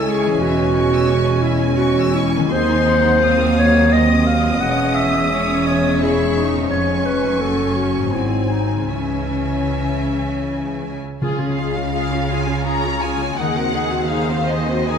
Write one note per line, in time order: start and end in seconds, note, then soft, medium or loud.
0.00 0.39 C#2 soft
0.00 0.40 C#2 medium
0.00 0.37 C#3 soft
0.00 0.29 G#3 soft
0.00 3.19 G#3 soft
0.00 2.48 C#4 soft
0.00 0.33 E4 soft
0.00 0.39 E4 soft
0.00 0.10 A4 medium
0.00 0.38 C#5 soft
0.00 2.48 G#5 medium
0.09 0.40 G#4 medium
0.09 0.27 C#6 soft
0.25 2.46 E3 medium
0.25 0.44 G#5 soft
0.30 2.49 G#3 soft
0.35 2.51 E4 soft
0.39 2.48 E2 medium
0.39 2.35 C#4 medium
0.39 1.44 F#4 medium
0.39 2.53 C#5 soft
0.44 2.49 E1 medium
0.44 0.59 E5 medium
0.61 0.76 G#5 soft
0.76 0.92 C#6 soft
0.93 1.09 E6 soft
1.09 1.26 C#6 medium
1.26 1.43 G#5 soft
1.42 1.76 E4 medium
1.42 1.60 E5 soft
1.59 1.77 G#5 soft
1.77 2.16 F#4 medium
1.77 1.96 C#6 soft
1.97 2.15 E6 soft
2.15 2.54 E4 medium
2.15 2.35 C#6 medium
2.36 4.57 D#3 medium
2.36 2.52 G#5 soft
2.41 4.59 F#3 soft
2.45 4.62 C4 soft
2.50 4.59 D#2 medium
2.50 4.58 C4 medium
2.50 3.20 D#4 medium
2.50 4.64 C5 soft
2.50 3.41 C5 medium
2.50 2.87 G#5 medium
2.50 3.19 C6 medium
2.89 3.24 F#5 medium
3.23 4.62 F#3 medium
3.23 3.58 C4 medium
3.23 3.94 F5 medium
3.23 3.91 D#6 soft
3.58 3.94 A#3 medium
3.58 3.95 C#5 medium
3.92 4.62 C4 soft
3.92 4.26 D#5 medium
3.92 5.34 D#5 medium
3.92 5.98 D#6 medium
4.26 4.62 F5 medium
4.45 6.66 E2 soft
4.50 7.38 G#3 soft
4.54 6.62 C#4 soft
4.59 7.40 G#3 soft
4.59 8.13 C#4 medium
4.59 5.31 C#4 soft
4.59 6.67 G#4 soft
4.59 4.97 F#5 medium
4.63 6.73 E1 medium
4.63 6.72 E2 medium
4.95 5.69 E5 medium
5.32 6.01 C#4 soft
5.32 5.69 C#5 medium
5.67 6.04 C#5 medium
5.67 6.73 E5 soft
6.02 6.37 E4 soft
6.02 6.48 G#4 medium
6.02 6.69 C#6 soft
6.36 6.71 D#4 soft
6.54 7.35 F2 soft
6.59 7.37 B3 soft
6.59 7.30 C#4 soft
6.68 7.39 F2 soft
6.68 7.42 G#4 soft
6.68 7.07 C#5 medium
6.68 8.10 C#6 soft
6.72 7.40 F1 medium
6.72 7.40 C#4 soft
6.72 8.13 G#5 soft
7.06 7.43 B4 medium
7.23 8.07 F#2 soft
7.27 8.10 A3 soft
7.31 8.12 C#4 soft
7.36 8.09 F#4 soft
7.40 8.14 F#1 soft
7.40 8.13 F#2 soft
7.40 8.86 F#3 soft
7.40 8.12 C#4 soft
7.40 7.77 A4 medium
7.76 8.12 F#4 medium
7.96 8.84 G#2 soft
8.01 8.76 G#3 soft
8.05 8.89 C4 soft
8.10 8.88 C4 soft
8.10 8.53 E4 soft
8.10 8.91 F#4 soft
8.10 8.89 G#5 soft
8.14 8.90 G#1 soft
8.14 8.90 G#2 soft
8.14 8.89 C4 soft
8.14 8.89 G#5 soft
8.51 8.92 D#4 soft
8.72 11.17 C#3 soft
8.77 11.46 G#3 soft
8.81 11.70 C#4 soft
8.86 10.84 E3 soft
8.86 10.88 C#4 soft
8.86 11.01 C#4 soft
8.86 11.23 E4 soft
8.86 11.01 E5 soft
8.90 10.98 C#2 soft
8.90 10.98 C#3 soft
8.90 10.85 C#4 soft
8.90 10.98 G#5 soft
11.21 13.34 C#2 medium
11.21 12.27 C#3 medium
11.21 13.41 C#3 medium
11.21 13.35 C#3 medium
11.21 11.38 F4 soft
11.21 11.56 G#4 soft
11.21 11.39 G#4 soft
11.39 11.58 C#4 soft
11.39 11.57 F4 soft
11.47 13.15 G#3 soft
11.58 11.74 F4 soft
11.58 11.76 G#4 soft
11.58 12.67 F5 soft
11.72 12.18 C#4 soft
11.72 11.94 C#4 soft
11.72 11.92 F4 soft
11.93 12.09 F4 soft
11.93 12.11 G#4 soft
11.93 12.67 G#4 soft
11.93 12.28 F5 medium
12.11 12.30 C#4 soft
12.11 12.28 F4 soft
12.19 12.91 C#4 soft
12.29 12.46 F4 soft
12.29 12.49 G#4 soft
12.29 12.66 G#5 medium
12.44 12.67 C#4 soft
12.44 12.65 F4 soft
12.44 13.42 C#5 soft
12.66 12.84 F4 soft
12.66 12.84 G#4 soft
12.66 14.09 G#4 soft
12.66 13.38 C#5 soft
12.66 13.02 A#5 medium
12.85 13.03 C#4 soft
12.85 13.01 F4 soft
12.92 13.42 C#4 soft
13.01 13.19 F4 soft
13.01 13.20 G#4 soft
13.01 13.38 G#5 medium
13.16 13.62 G#3 soft
13.16 13.38 F4 soft
13.20 13.38 C#4 soft
13.37 14.98 D#2 medium
13.37 14.98 D#3 medium
13.37 14.98 D#3 soft
13.37 13.55 D#4 soft
13.37 13.55 G#4 soft
13.37 13.73 A#4 soft
13.37 14.09 F#5 medium
13.55 13.73 C4 soft
13.55 13.73 F#4 soft
13.63 14.98 G#3 soft
13.73 13.91 D#4 soft
13.73 13.91 G#4 soft
13.73 14.10 G#4 soft
13.87 14.35 C4 soft
13.87 14.09 C4 soft
13.87 14.09 F#4 soft
14.08 14.27 D#4 soft
14.08 14.27 G#4 soft
14.08 14.88 G#4 soft
14.08 14.86 C5 medium
14.08 14.48 F5 medium
14.28 14.49 C4 soft
14.28 14.49 F#4 soft
14.36 14.98 C4 soft
14.46 14.68 D#4 soft
14.46 14.69 G#4 soft
14.46 14.87 D#5 medium
14.64 14.88 C4 soft
14.64 14.88 F#4 soft
14.64 14.98 C5 soft
14.87 14.98 D#4 soft
14.87 14.98 G#4 soft
14.87 14.98 A#4 medium
14.87 14.98 G#5 medium